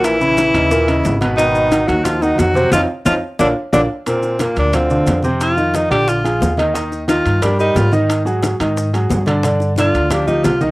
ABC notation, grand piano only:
X:1
M:4/4
L:1/8
Q:1/4=179
K:Bbmix
V:1 name="Grand piano"
[B,,B,B] [_D,_D_F]2 [D,DE] [B,,B,B] [D,De]2 [_C,_C_c] | [_C,_C_c]2 [E,E_G] [E,EG]2 [E,EG]2 [=C,=C=c] | [CEF] z [CEF] z [B,DF] z [B,DF] z | [K:Bb] [B,,B,B]2 [B,,B,B]2 [D,DF] [D,DF]2 [C,Cc]- |
[C,Cc] [E,EF]2 [D,Dd]2 [F,F_A]2 [E,Ee] | [E,Ee]2 [E,Ee]2 [G,GB] [G,GB]2 [E,Ee]- | [E,Ee] [_G,_G_A]2 [E,Ee]2 [G,GA]2 [D,Dd] | [D,Dd]2 [D,Dd]2 [F,FG] [F,FG]2 [E,Ee] |]